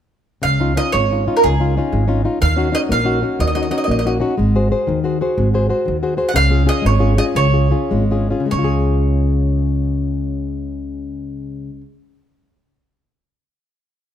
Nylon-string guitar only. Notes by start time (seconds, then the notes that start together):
0.42 C#3
0.60 C#4 D#4 F4
0.76 C#4 D#4 F4
0.93 G#3
1.11 C#4 D#4 F4
1.27 C#4 D#4 F4
1.44 C#3
1.60 C#4 D#4 F4
1.77 C#4 D#4 F4
1.92 G#3
2.08 C#4 D#4 F4
2.25 C#4 D#4 F4
2.41 D#3
2.56 C#4 D#4 F#4
2.72 C#4 D#4 F#4
2.89 A#3
3.04 C#4 D#4 F#4
3.22 C#4 D#4 F#4
3.39 D#3
3.55 C#4 D#4 F#4
3.71 C#4 D#4 F#4
3.88 A#3
4.05 C#4 D#4 F#4
4.20 C#4 D#4 F#4
4.38 G#3
4.56 F#4 G#4 C5
4.72 F#4 G#4 C5
4.87 D#3
5.04 F#4 G#4 C5
5.21 F#4 G#4 C5
5.38 G#3
5.54 F#4 G#4 C5
5.69 F#4 G#4 C5
5.85 D#3
6.03 F#4 G#4 C5
6.17 F#4 G#4 C5
6.34 C#3
6.51 C#4 F4 G#4
6.66 C#4 F4 G#4
6.82 G#3
6.99 C#4 F4 G#4
7.17 C#4 F4 G#4
7.35 C#3
7.53 C#4 F4 G#4
7.71 C#4 F4 G#4
7.91 G#3
8.11 C#4 F4 G#4
8.30 C#4 F4 G#4
8.40 C#3
8.46 G#3
8.53 C#4
8.59 F4
8.64 G#4